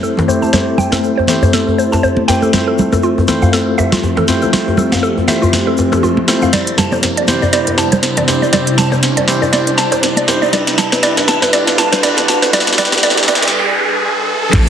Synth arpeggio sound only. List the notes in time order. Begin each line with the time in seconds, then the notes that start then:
0.03 A4
0.28 C5
0.42 A5
0.53 C5
0.78 G5
0.93 A4
1.18 C5
1.43 C5
1.54 A4
1.78 C5
1.92 A5
2.03 C5
2.28 G5
2.42 A4
2.68 A4
2.93 A4
3.03 F4
3.28 A4
3.42 F5
3.53 A4
3.78 E5
3.92 F4
4.17 A4
4.42 A4
4.53 F4
4.78 A4
4.92 F5
5.03 A4
5.28 E5
5.42 F4
5.67 A4
5.92 A4
6.03 F4
6.28 A4
6.42 F5
6.53 D5
6.78 A5
6.92 C5
7.17 D5
7.42 D5
7.53 D5
7.78 A5
7.92 C5
8.17 D5
8.42 D5
8.53 D5
8.78 A5
8.92 C5
9.17 D5
9.42 D5
9.53 D5
9.78 A5
9.92 C5
10.17 D5
10.42 D5
10.53 D5
10.78 A5
10.92 B4
11.03 D5
11.28 A5
11.43 B4
11.53 D5
11.78 A5
11.92 B4
12.03 D5
12.28 A5
12.42 B4
12.53 D5
12.78 D5
13.03 D5
13.28 D5
14.54 A4